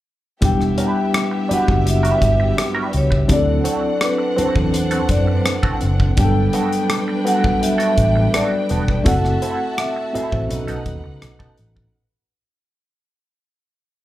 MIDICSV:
0, 0, Header, 1, 9, 480
1, 0, Start_track
1, 0, Key_signature, 1, "minor"
1, 0, Tempo, 720288
1, 281, Time_signature, 4, 2, 24, 8
1, 9362, End_track
2, 0, Start_track
2, 0, Title_t, "Vibraphone"
2, 0, Program_c, 0, 11
2, 299, Note_on_c, 0, 79, 92
2, 1024, Note_on_c, 0, 78, 82
2, 1030, Note_off_c, 0, 79, 0
2, 1202, Note_off_c, 0, 78, 0
2, 1210, Note_on_c, 0, 78, 52
2, 1248, Note_off_c, 0, 78, 0
2, 1264, Note_on_c, 0, 76, 64
2, 1704, Note_off_c, 0, 76, 0
2, 1981, Note_on_c, 0, 73, 82
2, 2083, Note_off_c, 0, 73, 0
2, 2213, Note_on_c, 0, 74, 97
2, 2690, Note_on_c, 0, 71, 80
2, 2699, Note_off_c, 0, 74, 0
2, 2907, Note_off_c, 0, 71, 0
2, 2928, Note_on_c, 0, 72, 81
2, 3033, Note_off_c, 0, 72, 0
2, 3158, Note_on_c, 0, 72, 72
2, 3378, Note_off_c, 0, 72, 0
2, 3399, Note_on_c, 0, 74, 67
2, 3455, Note_on_c, 0, 72, 63
2, 3457, Note_off_c, 0, 74, 0
2, 3515, Note_off_c, 0, 72, 0
2, 3516, Note_on_c, 0, 71, 62
2, 3575, Note_off_c, 0, 71, 0
2, 3578, Note_on_c, 0, 72, 64
2, 3637, Note_off_c, 0, 72, 0
2, 4131, Note_on_c, 0, 79, 97
2, 4852, Note_on_c, 0, 78, 96
2, 4864, Note_off_c, 0, 79, 0
2, 5084, Note_on_c, 0, 76, 80
2, 5090, Note_off_c, 0, 78, 0
2, 5566, Note_on_c, 0, 74, 78
2, 5574, Note_off_c, 0, 76, 0
2, 6044, Note_on_c, 0, 78, 86
2, 6055, Note_off_c, 0, 74, 0
2, 6479, Note_off_c, 0, 78, 0
2, 6487, Note_on_c, 0, 78, 54
2, 6525, Note_off_c, 0, 78, 0
2, 6526, Note_on_c, 0, 76, 75
2, 7008, Note_on_c, 0, 75, 66
2, 7017, Note_off_c, 0, 76, 0
2, 7698, Note_off_c, 0, 75, 0
2, 9362, End_track
3, 0, Start_track
3, 0, Title_t, "Violin section"
3, 0, Program_c, 1, 48
3, 281, Note_on_c, 1, 67, 70
3, 284, Note_on_c, 1, 59, 64
3, 284, Note_on_c, 1, 76, 73
3, 2171, Note_off_c, 1, 67, 0
3, 2172, Note_off_c, 1, 59, 0
3, 2172, Note_off_c, 1, 76, 0
3, 2194, Note_on_c, 1, 60, 69
3, 2195, Note_on_c, 1, 78, 73
3, 2197, Note_on_c, 1, 62, 69
3, 4086, Note_off_c, 1, 60, 0
3, 4087, Note_off_c, 1, 78, 0
3, 4088, Note_off_c, 1, 62, 0
3, 4115, Note_on_c, 1, 62, 76
3, 4118, Note_on_c, 1, 71, 73
3, 4119, Note_on_c, 1, 79, 77
3, 6009, Note_off_c, 1, 62, 0
3, 6010, Note_off_c, 1, 71, 0
3, 6011, Note_off_c, 1, 79, 0
3, 6032, Note_on_c, 1, 76, 73
3, 6033, Note_on_c, 1, 66, 76
3, 6035, Note_on_c, 1, 81, 82
3, 6977, Note_off_c, 1, 66, 0
3, 6977, Note_off_c, 1, 76, 0
3, 6978, Note_off_c, 1, 81, 0
3, 6990, Note_on_c, 1, 63, 68
3, 6991, Note_on_c, 1, 78, 81
3, 6992, Note_on_c, 1, 71, 71
3, 7937, Note_off_c, 1, 63, 0
3, 7938, Note_off_c, 1, 78, 0
3, 7939, Note_off_c, 1, 71, 0
3, 9362, End_track
4, 0, Start_track
4, 0, Title_t, "Clean electric guitar"
4, 0, Program_c, 2, 27
4, 519, Note_on_c, 2, 62, 58
4, 527, Note_on_c, 2, 67, 55
4, 532, Note_on_c, 2, 71, 68
4, 653, Note_off_c, 2, 62, 0
4, 657, Note_off_c, 2, 67, 0
4, 659, Note_off_c, 2, 71, 0
4, 993, Note_on_c, 2, 62, 57
4, 1001, Note_on_c, 2, 67, 57
4, 1004, Note_on_c, 2, 71, 64
4, 1106, Note_off_c, 2, 62, 0
4, 1106, Note_off_c, 2, 71, 0
4, 1110, Note_off_c, 2, 67, 0
4, 1354, Note_on_c, 2, 71, 59
4, 1359, Note_on_c, 2, 67, 55
4, 1364, Note_on_c, 2, 62, 47
4, 1468, Note_off_c, 2, 62, 0
4, 1472, Note_off_c, 2, 67, 0
4, 1477, Note_off_c, 2, 71, 0
4, 1830, Note_on_c, 2, 71, 60
4, 1838, Note_on_c, 2, 67, 60
4, 1842, Note_on_c, 2, 62, 51
4, 1944, Note_off_c, 2, 62, 0
4, 1948, Note_off_c, 2, 67, 0
4, 1952, Note_off_c, 2, 71, 0
4, 2428, Note_on_c, 2, 60, 59
4, 2433, Note_on_c, 2, 66, 62
4, 2440, Note_on_c, 2, 69, 65
4, 2542, Note_off_c, 2, 60, 0
4, 2544, Note_off_c, 2, 66, 0
4, 2548, Note_off_c, 2, 69, 0
4, 2908, Note_on_c, 2, 60, 68
4, 2917, Note_on_c, 2, 66, 66
4, 2923, Note_on_c, 2, 69, 75
4, 3022, Note_off_c, 2, 60, 0
4, 3024, Note_off_c, 2, 69, 0
4, 3026, Note_off_c, 2, 66, 0
4, 3271, Note_on_c, 2, 69, 60
4, 3278, Note_on_c, 2, 66, 54
4, 3283, Note_on_c, 2, 60, 51
4, 3383, Note_off_c, 2, 69, 0
4, 3386, Note_off_c, 2, 66, 0
4, 3388, Note_off_c, 2, 60, 0
4, 3751, Note_on_c, 2, 69, 62
4, 3758, Note_on_c, 2, 66, 57
4, 3763, Note_on_c, 2, 60, 51
4, 3862, Note_off_c, 2, 69, 0
4, 3866, Note_off_c, 2, 66, 0
4, 3868, Note_off_c, 2, 60, 0
4, 4356, Note_on_c, 2, 59, 70
4, 4364, Note_on_c, 2, 66, 79
4, 4368, Note_on_c, 2, 69, 85
4, 4465, Note_off_c, 2, 59, 0
4, 4469, Note_off_c, 2, 66, 0
4, 4471, Note_off_c, 2, 69, 0
4, 4831, Note_on_c, 2, 59, 62
4, 4838, Note_on_c, 2, 66, 66
4, 4844, Note_on_c, 2, 69, 65
4, 4942, Note_off_c, 2, 59, 0
4, 4942, Note_off_c, 2, 69, 0
4, 4946, Note_off_c, 2, 66, 0
4, 5186, Note_on_c, 2, 69, 64
4, 5193, Note_on_c, 2, 66, 68
4, 5199, Note_on_c, 2, 59, 49
4, 5300, Note_off_c, 2, 69, 0
4, 5303, Note_off_c, 2, 59, 0
4, 5304, Note_off_c, 2, 66, 0
4, 5557, Note_on_c, 2, 59, 60
4, 5564, Note_on_c, 2, 66, 68
4, 5571, Note_on_c, 2, 69, 69
4, 5666, Note_off_c, 2, 59, 0
4, 5667, Note_off_c, 2, 69, 0
4, 5669, Note_off_c, 2, 66, 0
4, 5798, Note_on_c, 2, 59, 45
4, 5804, Note_on_c, 2, 66, 53
4, 5809, Note_on_c, 2, 69, 56
4, 5882, Note_off_c, 2, 59, 0
4, 5886, Note_off_c, 2, 66, 0
4, 5888, Note_off_c, 2, 69, 0
4, 6278, Note_on_c, 2, 60, 67
4, 6283, Note_on_c, 2, 64, 66
4, 6290, Note_on_c, 2, 69, 72
4, 6387, Note_off_c, 2, 60, 0
4, 6389, Note_off_c, 2, 64, 0
4, 6393, Note_off_c, 2, 69, 0
4, 6760, Note_on_c, 2, 60, 64
4, 6766, Note_on_c, 2, 64, 75
4, 6774, Note_on_c, 2, 69, 63
4, 6871, Note_off_c, 2, 69, 0
4, 6879, Note_off_c, 2, 64, 0
4, 6892, Note_off_c, 2, 60, 0
4, 7114, Note_on_c, 2, 69, 59
4, 7122, Note_on_c, 2, 63, 57
4, 7126, Note_on_c, 2, 59, 53
4, 7226, Note_off_c, 2, 59, 0
4, 7226, Note_off_c, 2, 69, 0
4, 7230, Note_off_c, 2, 63, 0
4, 7592, Note_on_c, 2, 69, 54
4, 7599, Note_on_c, 2, 63, 51
4, 7603, Note_on_c, 2, 59, 51
4, 7705, Note_off_c, 2, 69, 0
4, 7709, Note_off_c, 2, 63, 0
4, 7711, Note_off_c, 2, 59, 0
4, 9362, End_track
5, 0, Start_track
5, 0, Title_t, "Tine electric piano"
5, 0, Program_c, 3, 4
5, 273, Note_on_c, 3, 55, 82
5, 277, Note_on_c, 3, 59, 75
5, 280, Note_on_c, 3, 62, 76
5, 284, Note_on_c, 3, 64, 74
5, 285, Note_on_c, 3, 67, 91
5, 390, Control_c, 3, 64, 127
5, 744, Note_off_c, 3, 55, 0
5, 746, Note_off_c, 3, 59, 0
5, 748, Note_off_c, 3, 62, 0
5, 750, Note_off_c, 3, 64, 0
5, 750, Note_off_c, 3, 67, 0
5, 999, Note_on_c, 3, 54, 65
5, 1001, Note_on_c, 3, 59, 56
5, 1005, Note_on_c, 3, 64, 63
5, 1006, Note_on_c, 3, 62, 55
5, 1011, Note_on_c, 3, 66, 72
5, 1077, Note_off_c, 3, 54, 0
5, 1079, Note_off_c, 3, 59, 0
5, 1081, Note_off_c, 3, 62, 0
5, 1081, Note_off_c, 3, 64, 0
5, 1083, Note_off_c, 3, 66, 0
5, 1118, Note_on_c, 3, 66, 56
5, 1119, Note_on_c, 3, 59, 53
5, 1122, Note_on_c, 3, 62, 49
5, 1125, Note_on_c, 3, 64, 54
5, 1126, Note_on_c, 3, 67, 61
5, 1741, Note_off_c, 3, 66, 0
5, 1742, Note_off_c, 3, 59, 0
5, 1743, Note_off_c, 3, 62, 0
5, 1745, Note_off_c, 3, 64, 0
5, 1745, Note_off_c, 3, 67, 0
5, 2185, Note_on_c, 3, 54, 86
5, 2186, Note_on_c, 3, 60, 73
5, 2189, Note_on_c, 3, 62, 76
5, 2191, Note_on_c, 3, 64, 78
5, 2193, Note_on_c, 3, 67, 71
5, 2208, Control_c, 3, 64, 0
5, 2236, Note_on_c, 3, 69, 90
5, 2239, Note_off_c, 3, 67, 0
5, 2341, Control_c, 3, 64, 127
5, 2658, Note_off_c, 3, 54, 0
5, 2659, Note_off_c, 3, 60, 0
5, 2660, Note_off_c, 3, 62, 0
5, 2661, Note_off_c, 3, 64, 0
5, 2683, Note_off_c, 3, 69, 0
5, 2912, Note_on_c, 3, 54, 67
5, 2914, Note_on_c, 3, 60, 60
5, 2915, Note_on_c, 3, 62, 62
5, 2918, Note_on_c, 3, 64, 59
5, 2920, Note_on_c, 3, 71, 68
5, 2992, Note_off_c, 3, 54, 0
5, 2993, Note_off_c, 3, 60, 0
5, 2994, Note_off_c, 3, 62, 0
5, 2995, Note_off_c, 3, 64, 0
5, 2996, Note_off_c, 3, 71, 0
5, 3029, Note_on_c, 3, 54, 57
5, 3033, Note_on_c, 3, 60, 55
5, 3036, Note_on_c, 3, 62, 52
5, 3037, Note_on_c, 3, 64, 52
5, 3041, Note_on_c, 3, 69, 58
5, 3655, Note_off_c, 3, 54, 0
5, 3657, Note_off_c, 3, 60, 0
5, 3658, Note_off_c, 3, 62, 0
5, 3659, Note_off_c, 3, 64, 0
5, 3661, Note_off_c, 3, 69, 0
5, 4109, Note_on_c, 3, 55, 82
5, 4113, Note_on_c, 3, 59, 78
5, 4115, Note_on_c, 3, 62, 78
5, 4117, Note_on_c, 3, 54, 75
5, 4121, Note_on_c, 3, 67, 78
5, 4124, Control_c, 3, 64, 0
5, 4161, Note_off_c, 3, 67, 0
5, 4162, Note_on_c, 3, 69, 96
5, 4232, Control_c, 3, 64, 127
5, 4579, Note_off_c, 3, 55, 0
5, 4581, Note_off_c, 3, 59, 0
5, 4582, Note_off_c, 3, 62, 0
5, 4583, Note_off_c, 3, 54, 0
5, 4606, Note_off_c, 3, 69, 0
5, 4827, Note_on_c, 3, 55, 70
5, 4829, Note_on_c, 3, 59, 58
5, 4835, Note_on_c, 3, 62, 61
5, 4837, Note_on_c, 3, 66, 58
5, 4838, Note_on_c, 3, 69, 76
5, 4908, Note_off_c, 3, 55, 0
5, 4909, Note_off_c, 3, 59, 0
5, 4913, Note_off_c, 3, 62, 0
5, 4913, Note_off_c, 3, 66, 0
5, 4914, Note_off_c, 3, 69, 0
5, 4949, Note_on_c, 3, 55, 59
5, 4953, Note_on_c, 3, 59, 49
5, 4955, Note_on_c, 3, 62, 51
5, 4957, Note_on_c, 3, 54, 57
5, 4961, Note_on_c, 3, 69, 68
5, 5576, Note_off_c, 3, 55, 0
5, 5578, Note_off_c, 3, 59, 0
5, 5578, Note_off_c, 3, 62, 0
5, 5580, Note_off_c, 3, 54, 0
5, 5581, Note_off_c, 3, 69, 0
5, 6022, Note_on_c, 3, 57, 83
5, 6027, Note_on_c, 3, 60, 82
5, 6030, Note_on_c, 3, 64, 77
5, 6032, Note_on_c, 3, 66, 81
5, 6036, Note_on_c, 3, 69, 97
5, 6042, Control_c, 3, 64, 0
5, 6167, Control_c, 3, 64, 127
5, 6497, Note_off_c, 3, 57, 0
5, 6500, Note_off_c, 3, 60, 0
5, 6501, Note_off_c, 3, 64, 0
5, 6502, Note_off_c, 3, 66, 0
5, 6504, Note_off_c, 3, 69, 0
5, 6750, Note_on_c, 3, 60, 61
5, 6751, Note_on_c, 3, 57, 65
5, 6753, Note_on_c, 3, 64, 60
5, 6757, Note_on_c, 3, 66, 60
5, 6760, Note_on_c, 3, 69, 78
5, 6832, Note_off_c, 3, 57, 0
5, 6832, Note_off_c, 3, 60, 0
5, 6833, Note_off_c, 3, 64, 0
5, 6835, Note_off_c, 3, 66, 0
5, 6836, Note_off_c, 3, 69, 0
5, 6869, Note_on_c, 3, 57, 57
5, 6871, Note_on_c, 3, 60, 52
5, 6871, Note_on_c, 3, 64, 51
5, 6877, Note_on_c, 3, 66, 53
5, 6879, Note_on_c, 3, 72, 63
5, 6988, Note_off_c, 3, 66, 0
5, 6988, Note_on_c, 3, 59, 65
5, 6991, Note_on_c, 3, 61, 60
5, 6992, Note_on_c, 3, 63, 61
5, 6993, Note_off_c, 3, 57, 0
5, 6994, Note_off_c, 3, 60, 0
5, 6995, Note_off_c, 3, 64, 0
5, 6996, Note_on_c, 3, 66, 61
5, 6999, Note_off_c, 3, 72, 0
5, 7000, Note_on_c, 3, 69, 76
5, 7005, Control_c, 3, 64, 0
5, 7103, Control_c, 3, 64, 127
5, 7763, Note_off_c, 3, 59, 0
5, 7765, Note_off_c, 3, 61, 0
5, 7765, Note_off_c, 3, 63, 0
5, 7767, Note_off_c, 3, 66, 0
5, 7769, Note_off_c, 3, 69, 0
5, 7970, Control_c, 3, 64, 0
5, 9362, End_track
6, 0, Start_track
6, 0, Title_t, "Fingered electric bass"
6, 0, Program_c, 4, 33
6, 286, Note_on_c, 4, 28, 96
6, 475, Note_off_c, 4, 28, 0
6, 1124, Note_on_c, 4, 30, 80
6, 1408, Note_off_c, 4, 30, 0
6, 1482, Note_on_c, 4, 31, 77
6, 1671, Note_off_c, 4, 31, 0
6, 1960, Note_on_c, 4, 37, 74
6, 2150, Note_off_c, 4, 37, 0
6, 2200, Note_on_c, 4, 38, 92
6, 2389, Note_off_c, 4, 38, 0
6, 3038, Note_on_c, 4, 40, 77
6, 3323, Note_off_c, 4, 40, 0
6, 3395, Note_on_c, 4, 42, 90
6, 3586, Note_off_c, 4, 42, 0
6, 3883, Note_on_c, 4, 30, 75
6, 4070, Note_off_c, 4, 30, 0
6, 4120, Note_on_c, 4, 31, 92
6, 4308, Note_off_c, 4, 31, 0
6, 5318, Note_on_c, 4, 33, 84
6, 5507, Note_off_c, 4, 33, 0
6, 5802, Note_on_c, 4, 28, 78
6, 5990, Note_off_c, 4, 28, 0
6, 6041, Note_on_c, 4, 30, 87
6, 6230, Note_off_c, 4, 30, 0
6, 6882, Note_on_c, 4, 33, 83
6, 6976, Note_off_c, 4, 33, 0
6, 7004, Note_on_c, 4, 35, 89
6, 7097, Note_off_c, 4, 35, 0
6, 7129, Note_on_c, 4, 35, 70
6, 7220, Note_off_c, 4, 35, 0
6, 7240, Note_on_c, 4, 39, 81
6, 7335, Note_off_c, 4, 39, 0
6, 7366, Note_on_c, 4, 37, 80
6, 7459, Note_off_c, 4, 37, 0
6, 7484, Note_on_c, 4, 35, 73
6, 7577, Note_off_c, 4, 35, 0
6, 7724, Note_on_c, 4, 33, 82
6, 7914, Note_off_c, 4, 33, 0
6, 9362, End_track
7, 0, Start_track
7, 0, Title_t, "Muted clean electric guitar strokes"
7, 876, Note_on_c, 9, 29, 32
7, 942, Note_off_c, 9, 29, 0
7, 1114, Note_on_c, 9, 29, 34
7, 1180, Note_off_c, 9, 29, 0
7, 1239, Note_on_c, 9, 29, 27
7, 1305, Note_off_c, 9, 29, 0
7, 1476, Note_on_c, 9, 29, 37
7, 1542, Note_off_c, 9, 29, 0
7, 1598, Note_on_c, 9, 29, 38
7, 1665, Note_off_c, 9, 29, 0
7, 1716, Note_on_c, 9, 29, 31
7, 1782, Note_off_c, 9, 29, 0
7, 1952, Note_on_c, 9, 29, 30
7, 2019, Note_off_c, 9, 29, 0
7, 2070, Note_on_c, 9, 29, 38
7, 2136, Note_off_c, 9, 29, 0
7, 2788, Note_on_c, 9, 29, 32
7, 2855, Note_off_c, 9, 29, 0
7, 3032, Note_on_c, 9, 29, 35
7, 3099, Note_off_c, 9, 29, 0
7, 3150, Note_on_c, 9, 29, 29
7, 3217, Note_off_c, 9, 29, 0
7, 3396, Note_on_c, 9, 29, 28
7, 3462, Note_off_c, 9, 29, 0
7, 3514, Note_on_c, 9, 29, 34
7, 3581, Note_off_c, 9, 29, 0
7, 3633, Note_on_c, 9, 29, 34
7, 3700, Note_off_c, 9, 29, 0
7, 3876, Note_on_c, 9, 29, 35
7, 3943, Note_off_c, 9, 29, 0
7, 3996, Note_on_c, 9, 29, 35
7, 4063, Note_off_c, 9, 29, 0
7, 4718, Note_on_c, 9, 29, 37
7, 4784, Note_off_c, 9, 29, 0
7, 4950, Note_on_c, 9, 29, 38
7, 5016, Note_off_c, 9, 29, 0
7, 5072, Note_on_c, 9, 29, 27
7, 5139, Note_off_c, 9, 29, 0
7, 5311, Note_on_c, 9, 29, 30
7, 5378, Note_off_c, 9, 29, 0
7, 5435, Note_on_c, 9, 29, 41
7, 5501, Note_off_c, 9, 29, 0
7, 5675, Note_on_c, 9, 29, 35
7, 5742, Note_off_c, 9, 29, 0
7, 5923, Note_on_c, 9, 29, 39
7, 5990, Note_off_c, 9, 29, 0
7, 6640, Note_on_c, 9, 29, 45
7, 6706, Note_off_c, 9, 29, 0
7, 6999, Note_on_c, 9, 29, 30
7, 7066, Note_off_c, 9, 29, 0
7, 7356, Note_on_c, 9, 29, 33
7, 7423, Note_off_c, 9, 29, 0
7, 7478, Note_on_c, 9, 29, 28
7, 7544, Note_off_c, 9, 29, 0
7, 7719, Note_on_c, 9, 29, 27
7, 7786, Note_off_c, 9, 29, 0
7, 7838, Note_on_c, 9, 29, 36
7, 7905, Note_off_c, 9, 29, 0
7, 9362, End_track
8, 0, Start_track
8, 0, Title_t, "Muted fingered electric bass strokes"
8, 1004, Note_on_c, 9, 29, 44
8, 1071, Note_off_c, 9, 29, 0
8, 2923, Note_on_c, 9, 29, 48
8, 2989, Note_off_c, 9, 29, 0
8, 6765, Note_on_c, 9, 29, 46
8, 6832, Note_off_c, 9, 29, 0
8, 9362, End_track
9, 0, Start_track
9, 0, Title_t, "Drums"
9, 278, Note_on_c, 9, 42, 84
9, 282, Note_on_c, 9, 36, 96
9, 345, Note_off_c, 9, 42, 0
9, 348, Note_off_c, 9, 36, 0
9, 404, Note_on_c, 9, 37, 24
9, 471, Note_off_c, 9, 37, 0
9, 518, Note_on_c, 9, 42, 72
9, 585, Note_off_c, 9, 42, 0
9, 762, Note_on_c, 9, 37, 106
9, 764, Note_on_c, 9, 42, 68
9, 829, Note_off_c, 9, 37, 0
9, 831, Note_off_c, 9, 42, 0
9, 1007, Note_on_c, 9, 42, 61
9, 1073, Note_off_c, 9, 42, 0
9, 1122, Note_on_c, 9, 36, 77
9, 1188, Note_off_c, 9, 36, 0
9, 1244, Note_on_c, 9, 42, 84
9, 1311, Note_off_c, 9, 42, 0
9, 1364, Note_on_c, 9, 42, 48
9, 1431, Note_off_c, 9, 42, 0
9, 1478, Note_on_c, 9, 36, 77
9, 1479, Note_on_c, 9, 42, 56
9, 1544, Note_off_c, 9, 36, 0
9, 1546, Note_off_c, 9, 42, 0
9, 1721, Note_on_c, 9, 37, 101
9, 1723, Note_on_c, 9, 42, 72
9, 1788, Note_off_c, 9, 37, 0
9, 1790, Note_off_c, 9, 42, 0
9, 1953, Note_on_c, 9, 42, 54
9, 2020, Note_off_c, 9, 42, 0
9, 2078, Note_on_c, 9, 36, 77
9, 2144, Note_off_c, 9, 36, 0
9, 2193, Note_on_c, 9, 42, 87
9, 2196, Note_on_c, 9, 36, 98
9, 2259, Note_off_c, 9, 42, 0
9, 2262, Note_off_c, 9, 36, 0
9, 2432, Note_on_c, 9, 42, 68
9, 2499, Note_off_c, 9, 42, 0
9, 2672, Note_on_c, 9, 37, 98
9, 2674, Note_on_c, 9, 42, 74
9, 2739, Note_off_c, 9, 37, 0
9, 2741, Note_off_c, 9, 42, 0
9, 2920, Note_on_c, 9, 42, 64
9, 2987, Note_off_c, 9, 42, 0
9, 3036, Note_on_c, 9, 36, 69
9, 3103, Note_off_c, 9, 36, 0
9, 3158, Note_on_c, 9, 42, 84
9, 3224, Note_off_c, 9, 42, 0
9, 3272, Note_on_c, 9, 42, 50
9, 3338, Note_off_c, 9, 42, 0
9, 3390, Note_on_c, 9, 42, 65
9, 3392, Note_on_c, 9, 36, 67
9, 3457, Note_off_c, 9, 42, 0
9, 3459, Note_off_c, 9, 36, 0
9, 3636, Note_on_c, 9, 37, 97
9, 3638, Note_on_c, 9, 42, 80
9, 3702, Note_off_c, 9, 37, 0
9, 3704, Note_off_c, 9, 42, 0
9, 3753, Note_on_c, 9, 36, 87
9, 3820, Note_off_c, 9, 36, 0
9, 3870, Note_on_c, 9, 42, 47
9, 3937, Note_off_c, 9, 42, 0
9, 3997, Note_on_c, 9, 36, 71
9, 4063, Note_off_c, 9, 36, 0
9, 4112, Note_on_c, 9, 42, 91
9, 4116, Note_on_c, 9, 36, 108
9, 4178, Note_off_c, 9, 42, 0
9, 4182, Note_off_c, 9, 36, 0
9, 4352, Note_on_c, 9, 42, 70
9, 4419, Note_off_c, 9, 42, 0
9, 4482, Note_on_c, 9, 42, 44
9, 4548, Note_off_c, 9, 42, 0
9, 4596, Note_on_c, 9, 37, 98
9, 4598, Note_on_c, 9, 42, 69
9, 4663, Note_off_c, 9, 37, 0
9, 4665, Note_off_c, 9, 42, 0
9, 4843, Note_on_c, 9, 42, 66
9, 4910, Note_off_c, 9, 42, 0
9, 4960, Note_on_c, 9, 36, 72
9, 5026, Note_off_c, 9, 36, 0
9, 5084, Note_on_c, 9, 42, 87
9, 5150, Note_off_c, 9, 42, 0
9, 5197, Note_on_c, 9, 42, 54
9, 5264, Note_off_c, 9, 42, 0
9, 5315, Note_on_c, 9, 42, 62
9, 5316, Note_on_c, 9, 36, 68
9, 5382, Note_off_c, 9, 36, 0
9, 5382, Note_off_c, 9, 42, 0
9, 5558, Note_on_c, 9, 37, 104
9, 5560, Note_on_c, 9, 42, 78
9, 5625, Note_off_c, 9, 37, 0
9, 5627, Note_off_c, 9, 42, 0
9, 5793, Note_on_c, 9, 42, 49
9, 5860, Note_off_c, 9, 42, 0
9, 5920, Note_on_c, 9, 36, 63
9, 5986, Note_off_c, 9, 36, 0
9, 6036, Note_on_c, 9, 42, 85
9, 6038, Note_on_c, 9, 36, 108
9, 6102, Note_off_c, 9, 42, 0
9, 6105, Note_off_c, 9, 36, 0
9, 6163, Note_on_c, 9, 37, 29
9, 6230, Note_off_c, 9, 37, 0
9, 6278, Note_on_c, 9, 42, 64
9, 6345, Note_off_c, 9, 42, 0
9, 6518, Note_on_c, 9, 37, 104
9, 6520, Note_on_c, 9, 42, 73
9, 6584, Note_off_c, 9, 37, 0
9, 6586, Note_off_c, 9, 42, 0
9, 6767, Note_on_c, 9, 42, 66
9, 6833, Note_off_c, 9, 42, 0
9, 6880, Note_on_c, 9, 36, 70
9, 6946, Note_off_c, 9, 36, 0
9, 7001, Note_on_c, 9, 42, 89
9, 7068, Note_off_c, 9, 42, 0
9, 7118, Note_on_c, 9, 42, 50
9, 7185, Note_off_c, 9, 42, 0
9, 7235, Note_on_c, 9, 42, 61
9, 7236, Note_on_c, 9, 36, 75
9, 7302, Note_off_c, 9, 42, 0
9, 7303, Note_off_c, 9, 36, 0
9, 7477, Note_on_c, 9, 37, 89
9, 7479, Note_on_c, 9, 42, 76
9, 7544, Note_off_c, 9, 37, 0
9, 7546, Note_off_c, 9, 42, 0
9, 7597, Note_on_c, 9, 36, 90
9, 7663, Note_off_c, 9, 36, 0
9, 7714, Note_on_c, 9, 42, 51
9, 7780, Note_off_c, 9, 42, 0
9, 7841, Note_on_c, 9, 36, 79
9, 7907, Note_off_c, 9, 36, 0
9, 9362, End_track
0, 0, End_of_file